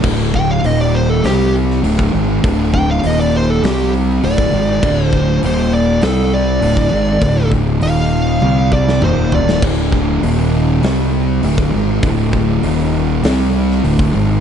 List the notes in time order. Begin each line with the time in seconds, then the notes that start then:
0.03 D1 D2 A2 D3, kick, crash
0.34 G5, kick
0.51 F5
0.63 D#1 D#2 A#2 D#3 D#5, open hi-hat
0.81 D5
0.95 C5
1.10 A4
1.24 C2 C3 G3 C4 G4, snare, open hi-hat
1.71 snare
1.83 D1 D2 A2 D3, open hi-hat
1.99 kick
2.13 G#1 G#2 D#3 G#3
2.43 D1 D2 A2 D3, kick, open hi-hat
2.74 G5, kick
2.91 F5
3.03 D#1 D#2 A#2 D#3 D#5, open hi-hat
3.20 D5
3.37 C5
3.50 A4
3.63 C2 C3 G3 C4 G4, snare, open hi-hat
4.23 D1 D2 A2 D3 D5, open hi-hat
4.38 kick
4.53 G#1 G#2 D#3 G#3
4.83 D1 D2 A2 D3, kick, crash
5.05 C5
5.13 kick
5.41 D#1 D#2 A#2 D#3, open hi-hat
5.46 C5
5.74 D5
6.02 C2 C3 G3 C4 A4, snare, open hi-hat
6.34 D5
6.62 D1 D2 A2 D3, open hi-hat
6.77 kick
6.91 G#1 G#2 D#3 G#3
7.21 D1 D2 A2 D3, kick, open hi-hat
7.52 kick
7.81 D#1 D#2 A#2 D#3 F5, open hi-hat
8.41 C2 C3 G3 C4, high tom
8.72 D5, kick
8.89 snare
9.01 D#1 D#2 A#2 D#3 C5, mid tom
9.32 D5, floor tom
9.49 snare
9.62 D1 D2 A2 D3, kick, crash
9.92 kick
10.22 D#1 D#2 A#2 D#3, open hi-hat
10.82 C2 C3 G3 C4, snare, open hi-hat
11.43 D1 D2 A2 D3, open hi-hat
11.58 kick
11.73 G#1 G#2 D#3 G#3
12.02 D1 D2 A2 D3, kick, open hi-hat
12.33 kick
12.62 D#1 D#2 A#2 D#3, open hi-hat
13.24 C2 C3 G3 C4, snare, open hi-hat
13.71 snare
13.84 D1 D2 A2 D3, open hi-hat
13.99 kick
14.14 G#1 G#2 D#3 G#3